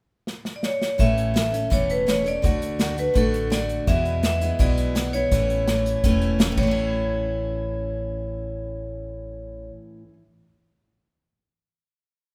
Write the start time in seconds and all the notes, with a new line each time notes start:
0.27 snare
0.45 snare
0.56 D5
0.63 C#5, snare
0.82 snare
0.98 A1 A2 E3 A3 C#4 A4 E5, kick, closed hi-hat
1.18 closed hi-hat
1.34 E3 A3 C#4 A4 E5, snare, closed hi-hat
1.52 A3 C#4 A4, closed hi-hat
1.70 E1 A2 E3 A3 C#4 A4 C#5, kick, closed hi-hat
1.90 B4, closed hi-hat
2.06 E3 A3 C#4 A4 C#5, snare, closed hi-hat
2.24 A3 C#4 A4 D5, closed hi-hat
2.42 D2 D3 A3 D4 F#4, kick, closed hi-hat
2.62 closed hi-hat
2.79 D3 A3 D4 F#4, snare, closed hi-hat
2.97 A3 D4 F#4 B4, closed hi-hat
3.14 A1 D3 A3 D4 F#4, kick, closed hi-hat
3.18 A4
3.34 closed hi-hat
3.50 D3 A3 D4 F#4 D5, snare, closed hi-hat
3.69 closed hi-hat
3.87 E2 B2 E3 G#3 B3 E4 E5, kick, closed hi-hat
4.05 closed hi-hat
4.23 E3 G#3 B3 E4 E5, snare, closed hi-hat
4.41 E3 G#3 B3 E4, closed hi-hat
4.59 B1 E2 B2 E3 G#3 B3 E4 D5, kick, closed hi-hat
4.78 closed hi-hat
4.95 E3 G#3 B3 E4, snare, closed hi-hat
5.13 E3 G#3 B3 E4 C#5, closed hi-hat
5.31 A1 A2 E3 A3 C#4 E4, kick, closed hi-hat
5.50 closed hi-hat
5.68 E3 A3 C#4 E4, snare, closed hi-hat
5.86 closed hi-hat
6.04 E1 A2 E3 A3 C#4 E4, kick, closed hi-hat
6.21 closed hi-hat
6.39 E3 A3 C#4 E4, snare, closed hi-hat
6.52 A2
6.57 A1 E3 C#5, kick, crash
6.63 A3
6.67 C#4
6.71 E4